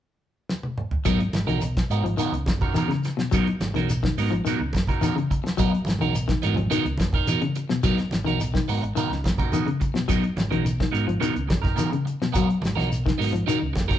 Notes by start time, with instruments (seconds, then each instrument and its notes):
0.49 snare
0.63 high tom
0.78 mid tom
0.91 floor tom
1.05 fingered electric bass G#1, clean electric guitar F#3 B3 D#4 F#4 A#4, kick, closed hi-hat, high conga, low conga, shekere
1.20 muted clean electric guitar stroke, closed hi-hat
1.33 fingered electric bass G#1, muted clean electric guitar stroke, snare, closed hi-hat, high conga, shekere
1.47 fingered electric bass B1, clean electric guitar D#3 D#4 F#4 A#4, closed hi-hat, high conga
1.61 muted clean electric guitar stroke, closed hi-hat, high conga, shekere
1.77 kick, snare, closed hi-hat
1.90 fingered electric bass G#2, clean electric guitar B3 D#4 F#4 A#4, closed hi-hat, shekere
2.04 fingered electric bass G#1, clean electric guitar F3, muted clean electric guitar stroke, closed hi-hat
2.17 clean electric guitar D#3 B3 D#4 F#4 A#4, closed hi-hat, high conga, shekere
2.32 fingered electric bass C#2, muted clean electric guitar stroke, closed hi-hat
2.46 fingered electric bass F#1, muted clean electric guitar stroke, kick, snare, closed hi-hat, high conga, shekere
2.61 clean electric guitar D#4 F#4 A#4, kick, low conga
2.74 clean electric guitar D#3 B3 D#4 F#4 A#4, closed hi-hat, high conga, shekere
2.88 clean electric guitar C#3, muted clean electric guitar stroke, snare, closed hi-hat
3.03 muted clean electric guitar stroke, snare, closed hi-hat, shekere
3.17 clean electric guitar B2, snare
3.31 clean electric guitar F#3 B3 D#4 F#4 A#4, kick, closed hi-hat, high conga, low conga, shekere
3.47 muted clean electric guitar stroke, closed hi-hat
3.60 fingered electric bass G#1, muted clean electric guitar stroke, snare, closed hi-hat, high conga, shekere
3.74 fingered electric bass B1, clean electric guitar D#3 D#4 F#4 A#4, snare, closed hi-hat, high conga
3.89 muted clean electric guitar stroke, closed hi-hat, high conga, shekere
4.03 clean electric guitar D#3, kick, snare
4.17 fingered electric bass G#2, clean electric guitar B3 D#4 F#4 A#4, open hi-hat, shekere
4.31 fingered electric bass G#1, clean electric guitar F3, muted clean electric guitar stroke, closed hi-hat
4.45 clean electric guitar D#3 B3 D#4 F#4 A#4, closed hi-hat, shekere
4.60 fingered electric bass C#2, muted clean electric guitar stroke
4.73 fingered electric bass F#1, muted clean electric guitar stroke, kick, snare, closed hi-hat, high conga, shekere
4.87 clean electric guitar D#4 F#4 A#4, kick, closed hi-hat, low conga
5.01 clean electric guitar D#3 B3 D#4 F#4 A#4, closed hi-hat, high conga, shekere
5.16 clean electric guitar C#3, muted clean electric guitar stroke, closed hi-hat
5.31 muted clean electric guitar stroke, kick, closed hi-hat, shekere
5.44 muted clean electric guitar stroke, snare, closed hi-hat
5.57 clean electric guitar F#3 B3 D#4 F#4 A#4, kick, closed hi-hat, high conga, low conga, shekere
5.72 muted clean electric guitar stroke, closed hi-hat
5.85 fingered electric bass G#1, muted clean electric guitar stroke, snare, closed hi-hat, high conga, shekere
5.99 fingered electric bass B1, clean electric guitar D#3 D#4 F#4 A#4, closed hi-hat, high conga
6.13 muted clean electric guitar stroke, closed hi-hat, high conga, shekere
6.28 clean electric guitar D#3, kick, snare, closed hi-hat
6.42 fingered electric bass G#2, clean electric guitar B3 D#4 F#4 A#4, closed hi-hat, high conga, shekere
6.54 fingered electric bass G#1, clean electric guitar F3, muted clean electric guitar stroke, closed hi-hat, low conga
6.70 clean electric guitar D#3 B3 D#4 F#4 A#4, closed hi-hat, shekere
6.85 fingered electric bass C#2, muted clean electric guitar stroke, closed hi-hat
6.98 fingered electric bass F#1, muted clean electric guitar stroke, kick, snare, closed hi-hat, high conga, shekere
7.13 clean electric guitar D#4 A#4, kick, low conga
7.27 clean electric guitar B3 D#4 F#4 A#4, closed hi-hat, high conga, shekere
7.42 clean electric guitar C#3, muted clean electric guitar stroke, closed hi-hat
7.55 muted clean electric guitar stroke, closed hi-hat, shekere
7.69 clean electric guitar B2, snare
7.83 clean electric guitar F#3 B3 D#4 F#4 A#4, kick, closed hi-hat, high conga, low conga, shekere
7.98 muted clean electric guitar stroke, snare, closed hi-hat
8.11 fingered electric bass G#1, muted clean electric guitar stroke, snare, closed hi-hat, high conga, shekere
8.25 fingered electric bass B1, clean electric guitar D#3 D#4 F#4 A#4, closed hi-hat, high conga
8.40 muted clean electric guitar stroke, closed hi-hat, high conga, shekere
8.54 clean electric guitar D#3, kick, snare
8.68 fingered electric bass G#2, clean electric guitar B3 D#4 F#4 A#4, open hi-hat, shekere
8.83 fingered electric bass G#1, muted clean electric guitar stroke, closed hi-hat
8.95 clean electric guitar D#3 B3 D#4 F#4 A#4, closed hi-hat, high conga, shekere
9.10 fingered electric bass C#2, muted clean electric guitar stroke, snare
9.24 fingered electric bass F#1, muted clean electric guitar stroke, kick, snare, closed hi-hat, high conga, shekere
9.38 clean electric guitar D#4 F#4 A#4, kick, closed hi-hat, low conga
9.52 clean electric guitar D#3 B3 D#4 F#4, closed hi-hat, high conga, shekere
9.66 clean electric guitar C#3, muted clean electric guitar stroke, closed hi-hat
9.80 muted clean electric guitar stroke, kick, closed hi-hat, shekere
9.94 clean electric guitar B2, snare, closed hi-hat
10.08 clean electric guitar F#3 B3 D#4 F#4 A#4, kick, closed hi-hat, high conga, low conga, shekere
10.23 muted clean electric guitar stroke, closed hi-hat
10.37 fingered electric bass G#1, muted clean electric guitar stroke, snare, closed hi-hat, high conga, shekere
10.51 fingered electric bass B1, clean electric guitar D#3 D#4 F#4 A#4, closed hi-hat, high conga
10.65 muted clean electric guitar stroke, closed hi-hat, high conga, shekere
10.80 clean electric guitar D#3, kick, snare, closed hi-hat
10.92 fingered electric bass G#2, clean electric guitar B3 D#4 F#4 A#4, closed hi-hat, shekere
11.07 fingered electric bass G#1, clean electric guitar F3, muted clean electric guitar stroke, closed hi-hat
11.20 clean electric guitar D#3 B3 D#4 F#4 A#4, closed hi-hat, high conga, shekere
11.34 fingered electric bass C#2, muted clean electric guitar stroke, closed hi-hat
11.48 fingered electric bass F#1, muted clean electric guitar stroke, kick, snare, closed hi-hat, high conga, shekere
11.62 clean electric guitar D#4 A#4, kick, snare, low conga
11.76 clean electric guitar D#3 B3 D#4 F#4 A#4, closed hi-hat, high conga, shekere
11.90 clean electric guitar C#3, muted clean electric guitar stroke, closed hi-hat
12.05 muted clean electric guitar stroke, closed hi-hat, shekere
12.22 clean electric guitar B2, snare
12.33 clean electric guitar F#3 B3 F#4 A#4, muted clean electric guitar stroke, kick, closed hi-hat, high conga, low conga, shekere
12.48 muted clean electric guitar stroke, closed hi-hat
12.62 fingered electric bass G#1, muted clean electric guitar stroke, snare, closed hi-hat, high conga, shekere
12.75 fingered electric bass B1, clean electric guitar D#4 F#4 A#4, muted clean electric guitar stroke, closed hi-hat, high conga
12.80 snare
12.90 muted clean electric guitar stroke, high conga, shekere
12.94 closed hi-hat
13.06 clean electric guitar D#3, kick, snare
13.18 fingered electric bass G#2, clean electric guitar B3 D#4 F#4 A#4, open hi-hat, shekere
13.22 snare
13.32 fingered electric bass G#1, clean electric guitar F3, muted clean electric guitar stroke, closed hi-hat
13.47 clean electric guitar D#3 D#4 F#4 A#4, muted clean electric guitar stroke, closed hi-hat, high conga, shekere
13.60 fingered electric bass C#2, muted clean electric guitar stroke
13.73 fingered electric bass F#1, muted clean electric guitar stroke, kick, snare, closed hi-hat, high conga, shekere
13.88 clean electric guitar D#4 F#4 A#4, kick, closed hi-hat, low conga
13.92 snare